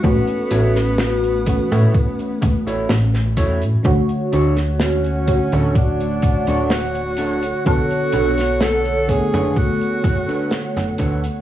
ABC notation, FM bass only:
X:1
M:4/4
L:1/16
Q:1/4=63
K:A
V:1 name="FM bass" clef=bass
A,,, z A,,,4 z A,, z2 E,,, A,,, A,,,2 E,, A,, | D,, z D,,4 z D,,,3 A,,, D,,,4 z | B,,, z B,,,4 z F,,, z2 F,,, z2 F,,, D,, z |]